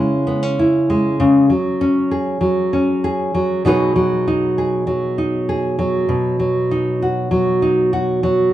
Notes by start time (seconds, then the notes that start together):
Already playing: C#3 G#3 C#4 E4
0.27 B3
0.43 C#4
0.59 E4
0.90 G#3
1.20 C#3
1.50 F#3
1.81 C#4
2.11 G#4
2.41 F#3
2.73 C#4
3.04 G#4
3.34 F#3
3.65 B2 F#3 D#4 G#4 B4
3.96 F#3
4.28 D#4
4.58 G#4
4.87 F#3
5.18 D#4
5.49 G#4
5.79 F#3
6.09 B2
6.39 F#3
6.71 D#4
7.02 F#4
7.31 F#3
7.62 D#4
7.93 F#4
8.23 F#3